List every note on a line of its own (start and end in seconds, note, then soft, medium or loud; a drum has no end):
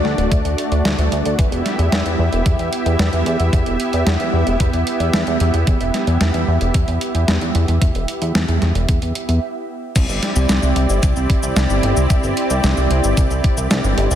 0.00 1.35 A3 medium
0.00 1.35 D4 medium
0.00 1.35 F#4 medium
0.00 1.35 D5 medium
0.05 0.15 D2 medium
0.05 snare soft
0.18 0.29 D1 medium
0.18 closed hi-hat soft
0.32 0.42 D2 loud
0.32 kick loud
0.32 closed hi-hat medium
0.45 0.55 D2 medium
0.45 closed hi-hat soft
0.58 closed hi-hat medium
0.72 0.82 D2 medium
0.72 closed hi-hat soft
0.85 0.96 D2 loud
0.85 snare loud
0.85 closed hi-hat medium
0.98 1.09 D2 medium
0.98 closed hi-hat soft
1.12 1.22 D2 medium
1.12 closed hi-hat medium
1.25 1.36 D2 medium
1.25 closed hi-hat soft
1.39 1.49 E2 loud
1.39 9.38 B3 medium
1.39 9.38 E4 medium
1.39 9.38 G4 medium
1.39 9.38 E5 medium
1.39 kick loud
1.39 closed hi-hat medium
1.52 1.63 E1 medium
1.52 closed hi-hat soft
1.66 snare soft
1.66 closed hi-hat medium
1.79 1.89 E2 medium
1.79 closed hi-hat soft
1.92 2.03 E2 loud
1.92 snare loud
1.92 closed hi-hat medium
2.06 2.16 E2 medium
2.06 closed hi-hat soft
2.19 2.30 E2 loud
2.32 2.43 E1 medium
2.32 closed hi-hat soft
2.46 2.56 E2 loud
2.46 kick loud
2.46 closed hi-hat medium
2.59 2.70 E2 medium
2.59 closed hi-hat soft
2.73 closed hi-hat medium
2.86 2.97 E2 medium
2.86 closed hi-hat soft
2.99 3.10 E2 loud
2.99 snare loud
2.99 closed hi-hat medium
3.13 3.23 E2 medium
3.13 closed hi-hat soft
3.26 3.37 E2 loud
3.26 closed hi-hat medium
3.40 3.50 E2 medium
3.40 closed hi-hat soft
3.53 3.63 E2 loud
3.53 kick loud
3.53 closed hi-hat medium
3.66 3.77 E1 medium
3.66 closed hi-hat soft
3.80 closed hi-hat medium
3.93 4.04 E2 medium
3.93 closed hi-hat soft
4.07 4.17 E2 loud
4.07 snare loud
4.07 closed hi-hat medium
4.20 4.30 E2 medium
4.20 closed hi-hat soft
4.33 4.44 E2 medium
4.47 4.57 E1 medium
4.47 closed hi-hat soft
4.60 4.71 E2 loud
4.60 kick loud
4.60 closed hi-hat medium
4.73 4.84 E2 medium
4.73 closed hi-hat soft
4.87 closed hi-hat medium
5.00 5.11 E2 medium
5.00 closed hi-hat soft
5.13 5.24 E2 loud
5.13 snare loud
5.13 closed hi-hat medium
5.27 5.38 E2 medium
5.27 closed hi-hat soft
5.40 5.51 E2 medium
5.40 closed hi-hat medium
5.54 5.64 E2 medium
5.54 closed hi-hat soft
5.67 5.78 E2 loud
5.67 kick loud
5.67 closed hi-hat medium
5.81 5.91 E1 medium
5.81 closed hi-hat soft
5.94 snare soft
5.94 closed hi-hat medium
6.07 6.18 E2 medium
6.07 closed hi-hat soft
6.21 6.31 E2 loud
6.21 snare loud
6.21 closed hi-hat medium
6.34 6.45 E2 medium
6.34 closed hi-hat soft
6.48 6.58 E2 loud
6.61 6.72 E1 medium
6.61 closed hi-hat soft
6.74 6.85 E2 loud
6.74 kick loud
6.74 closed hi-hat medium
6.88 6.98 E2 medium
6.88 closed hi-hat soft
7.01 closed hi-hat medium
7.15 7.25 E2 medium
7.15 closed hi-hat soft
7.28 7.39 E2 loud
7.28 snare loud
7.28 closed hi-hat medium
7.41 7.52 E2 medium
7.41 closed hi-hat soft
7.55 7.65 E2 medium
7.55 closed hi-hat medium
7.68 7.79 E2 medium
7.68 closed hi-hat soft
7.82 7.92 E2 loud
7.82 kick loud
7.82 closed hi-hat medium
7.95 8.06 E1 medium
7.95 closed hi-hat soft
8.08 closed hi-hat medium
8.22 8.32 E2 medium
8.22 closed hi-hat soft
8.35 8.46 E2 loud
8.35 snare loud
8.35 closed hi-hat medium
8.49 8.59 E2 medium
8.49 closed hi-hat soft
8.62 8.72 E2 loud
8.62 snare soft
8.62 closed hi-hat soft
8.75 8.86 E1 medium
8.75 closed hi-hat soft
8.89 8.99 E2 loud
8.89 kick loud
8.89 closed hi-hat medium
9.02 9.13 E2 medium
9.02 closed hi-hat soft
9.15 closed hi-hat medium
9.29 9.39 E2 medium
9.29 closed hi-hat soft
9.96 10.06 C2 loud
9.96 14.15 C4 medium
9.96 14.15 E4 medium
9.96 14.15 G4 medium
9.96 14.15 D5 medium
9.96 kick loud
9.96 closed hi-hat loud
9.96 crash loud
9.96 cabasa medium
10.09 10.20 G1 medium
10.09 cabasa soft
10.23 snare soft
10.23 closed hi-hat medium
10.36 10.47 C2 medium
10.36 cabasa medium
10.49 10.60 C2 loud
10.49 snare loud
10.49 closed hi-hat medium
10.49 cabasa soft
10.63 10.73 C2 medium
10.63 cabasa soft
10.76 10.87 C2 loud
10.76 closed hi-hat medium
10.90 11.00 G1 medium
10.90 cabasa medium
11.03 11.13 C2 loud
11.03 kick loud
11.03 closed hi-hat loud
11.03 cabasa medium
11.16 11.27 C2 medium
11.16 cabasa soft
11.30 kick loud
11.30 closed hi-hat medium
11.43 11.53 C2 medium
11.43 cabasa medium
11.56 11.67 C2 loud
11.56 snare loud
11.56 closed hi-hat medium
11.56 cabasa medium
11.70 11.80 G1 medium
11.70 cabasa soft
11.83 11.94 G1 loud
11.83 closed hi-hat medium
11.97 12.07 C2 medium
11.97 cabasa medium
12.10 12.21 C2 loud
12.10 kick loud
12.10 closed hi-hat medium
12.10 cabasa soft
12.24 12.34 G1 medium
12.24 cabasa soft
12.37 closed hi-hat medium
12.50 12.61 C2 medium
12.50 cabasa medium
12.64 12.74 C2 loud
12.64 snare loud
12.64 closed hi-hat medium
12.64 cabasa soft
12.77 12.88 C2 medium
12.77 cabasa soft
12.91 13.01 C2 loud
12.91 closed hi-hat medium
13.04 13.14 G1 medium
13.04 cabasa medium
13.17 13.28 C2 loud
13.17 kick loud
13.17 closed hi-hat loud
13.17 cabasa medium
13.31 13.41 C2 medium
13.31 cabasa soft
13.44 kick loud
13.44 closed hi-hat medium
13.57 13.68 C2 medium
13.57 cabasa medium
13.71 13.81 C2 loud
13.71 snare loud
13.71 closed hi-hat medium
13.71 cabasa medium
13.84 13.95 G1 medium
13.84 cabasa soft
13.98 14.08 G1 loud
13.98 closed hi-hat medium
14.11 14.15 C2 medium
14.11 cabasa medium